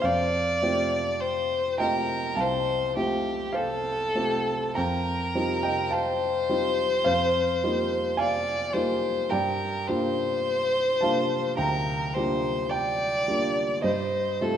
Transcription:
0.02 grand piano F2 C5 F5, violin D5
0.62 grand piano A3 C4 F4 G4
1.20 violin C5
1.78 grand piano A3 C4 F4 G4 D#5 G5, violin A#4
2.35 grand piano C2 F5 A5
2.40 violin C5
2.97 grand piano A3 C4 F4 G4, violin G4
3.53 violin A4, grand piano C5 F5
4.15 grand piano A3 C4 F4 G4
4.75 grand piano F2 G5 A#5, violin A#4
5.35 grand piano G3 C4 D#4 F4
5.63 grand piano D#5 G5
5.90 violin C5, grand piano F5 A5
6.49 grand piano G3 C4 D#4 F4
7.04 grand piano F2 C5 F5
7.64 grand piano G3 A#3 D#4 F4
8.17 violin D5, grand piano F5 G#5
8.73 grand piano G3 A#3 D#4 F4, violin C5
9.30 grand piano G2 D5 G5, violin A#4
9.87 grand piano G3 A#3 D4 F4, violin C5
11.01 grand piano G3 A#3 D4 F4 F5 A5
11.57 grand piano D2 G5 A#5, violin A#4
12.14 grand piano G3 A#3 D4, violin C5
12.18 grand piano F4
12.69 violin D5, grand piano D5 G5
13.28 grand piano G3 A#3 D4 F4
13.82 grand piano G2 C5 D#5, violin C5
14.41 grand piano G3 A3 C4 F4, violin A4

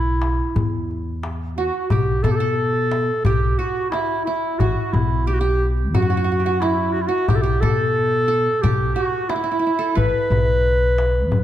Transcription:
Already playing: upright bass B1, qanun E4, clarinet E4
0.22 darbuka tek
0.41 darbuka ka
0.56 upright bass E2, darbuka dum
0.91 darbuka ka
1.23 darbuka tek
1.57 clarinet F#4, qanun F#4
1.90 upright bass B1, clarinet G4, qanun G4, darbuka dum
2.23 upright bass B2, clarinet A4, qanun A4, darbuka dum
2.31 clarinet G4
2.36 clarinet A4
2.40 qanun A4
2.58 darbuka ka
2.76 darbuka ka
2.92 darbuka tek
3.08 darbuka ka
3.25 upright bass B1, clarinet G4, qanun G4, darbuka dum
3.58 clarinet F#4, qanun F#4
3.90 clarinet E4, qanun E4, darbuka tek
4.25 clarinet E4, qanun E4
4.58 upright bass A1, clarinet F#4, qanun F#4, darbuka dum
4.92 upright bass B1, clarinet E4, darbuka dum
5.26 clarinet G4, qanun G4, darbuka ka
5.33 clarinet F#4
5.40 clarinet G4, qanun G4
5.45 darbuka ka
5.77 darbuka ka
5.93 upright bass F#2, clarinet F#4, qanun F#4, darbuka dum
6.02 qanun F#4
6.10 qanun F#4
6.17 qanun F#4
6.24 qanun F#4
6.32 qanun F#4
6.40 qanun G4
6.46 qanun F#4
6.60 clarinet E4, qanun E4, darbuka tek
6.92 clarinet F#4
7.01 clarinet E4
7.07 clarinet F#4, qanun F#4
7.28 upright bass B1, clarinet G4, qanun G4, darbuka dum
7.35 clarinet A4
7.42 clarinet G4, qanun G4
7.61 upright bass B2, clarinet A4, qanun A4, darbuka dum
7.97 darbuka ka
8.14 darbuka ka
8.28 qanun A4
8.47 darbuka ka
8.61 upright bass B1, clarinet G4, qanun G4, darbuka dum
8.94 clarinet F#4, qanun F#4
9.29 clarinet E4, qanun E4, darbuka tek
9.36 qanun E4
9.44 qanun E4
9.51 qanun E4
9.59 qanun E4
9.67 qanun E4
9.79 qanun A4
9.95 upright bass A1, qanun B4, clarinet B4, darbuka dum
10.30 upright bass B1, darbuka dum
10.65 darbuka ka
10.98 darbuka tek
11.15 darbuka ka
11.30 upright bass F#2, darbuka dum

